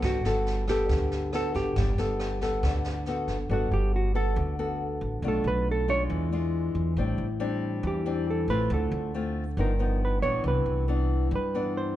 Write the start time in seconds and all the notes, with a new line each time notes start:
Already playing: B3 F#4 A4
0.02 G1 G3 F#4, kick, cross-stick, snare
0.25 G1 B3 F#4 A4, snare
0.46 snare
0.68 B3 G4 A4, kick, cross-stick, snare
0.89 D2 D3, kick, snare
1.11 snare
1.33 B3 F#4 A4, cross-stick, snare
1.54 G1 G4, kick, snare
1.76 G1 G3, kick, snare
1.98 G1 B3 A4, snare
2.20 cross-stick, snare
2.41 B3 A4, kick, snare
2.63 D2 D3, kick, cross-stick, snare
2.84 snare
3.06 B3 F#4 A4, snare
3.28 G1, kick, snare
3.49 G1 G3 B3 F#4 A4
3.71 G1 G4
3.96 F#4
4.15 B3 F#4 A4
4.36 D2 D3
4.59 B3 F#4 A4
5.01 A1
5.22 B1 B2 A3 D4 F4
5.28 A4
5.44 B1 B4
5.71 A4
5.88 G#3 D4 F4 C#5
6.10 E2 E3
6.32 G#3 D4 F4
6.75 E2
6.97 A1 A2 G3 C4 D4
7.18 A1
7.40 G3 C4 D4
7.83 E2 E3 G4
8.06 G3 C4 D4
8.30 A4
8.48 A1 A3 C4 F4 B4
8.70 D2 D3 A4
8.92 D2
9.14 A3 C4 F4
9.57 G1 G2 F3 B3 D#4 A#4
9.79 F3 B3 D#4
10.05 B4
10.22 A#1 E3 B3 D4 C#5
10.44 C2 C3
10.48 B4
10.66 C2
10.88 E3 B3 D4
11.31 G2
11.36 B4
11.55 E3 B3 D4
11.77 C5